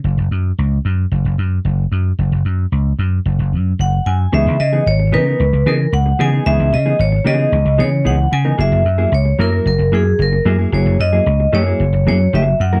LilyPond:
<<
  \new Staff \with { instrumentName = "Vibraphone" } { \time 4/4 \key cis \dorian \tempo 4 = 112 r1 | r2. fis''8 gis''8 | e''8 dis''8 cis''8 b'4 ais'8 fis''8 gis''8 | e''8 dis''8 cis''8 dis''4 cis''8 fis''8 gis''8 |
e''4 cis''8 ais'8 ais'8 gis'8 ais'8. r16 | cis''8 dis''4 cis''4 cis''8 e''8 fis''8 | }
  \new Staff \with { instrumentName = "Clean electric guitar" } { \time 4/4 \key cis \dorian r1 | r1 | <e b dis' gis'>8 r16 <e b dis' gis'>16 r8 <e b dis' ais'>16 <e b dis' ais'>16 r8 <e b dis' gis'>8 r8 <e b dis' gis'>16 <e b dis' gis'>16 | <e b dis' gis'>8 r16 <e b dis' gis'>16 r8 <e b dis' gis'>16 <e b dis' gis'>16 r8 <e b dis' gis'>8 <e b dis' gis'>8 r16 <e b dis' ais'>16 |
<fis ais e' gis'>8 r16 <fis ais e' gis'>16 r8 <fis ais e' ais'>16 <fis ais e' ais'>16 r8 <fis ais e' gis'>8 r8 <fis ais e' gis'>16 <fis ais e' gis'>16 | <fis ais e' gis'>8 r16 <fis ais e' gis'>16 r8 <fis ais e' gis'>16 <fis ais e' gis'>16 r8 <fis ais e' gis'>8 <fis ais e' gis'>8 r16 <fis ais e' ais'>16 | }
  \new Staff \with { instrumentName = "Slap bass" } { \clef bass \time 4/4 \key cis \dorian fis,,16 fis,,16 fis,8 cis,8 fis,8 fis,,16 fis,,16 fis,8 fis,,8 fis,8 | fis,,16 fis,,16 fis,8 cis,8 fis,8 fis,,16 fis,,16 fis,8 fis,,8 fis,8 | cis,16 cis,16 cis8 gis,,8 cis8 cis,16 cis,16 cis8 cis,8 cis8 | cis,16 cis,16 cis8 gis,,8 cis8 cis,16 cis,16 cis8 cis,8 cis8 |
fis,,16 fis,,16 fis,8 cis,8 fis,8 fis,,16 fis,,16 fis,8 fis,,8 fis,8 | fis,,16 fis,,16 fis,8 cis,8 fis,8 fis,,16 fis,,16 fis,8 fis,,8 fis,8 | }
>>